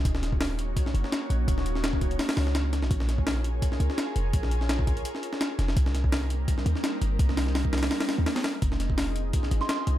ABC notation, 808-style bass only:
X:1
M:4/4
L:1/16
Q:"Swing 16ths" 1/4=168
K:Cphr
V:1 name="808-style bass" clef=bass
E,,,8 z2 _G,,, z3 B,,,2 | E,,,8 z2 D,,4- D,, B,,, | B,,,8 z2 D,, z3 F,,,2 | B,,,8 z6 F,,,2 |
C,,8 z2 E,, z3 G,,,2 | C,,8 z3 E,, z4 | F,,,8 z2 A,,, z3 C,,2 |]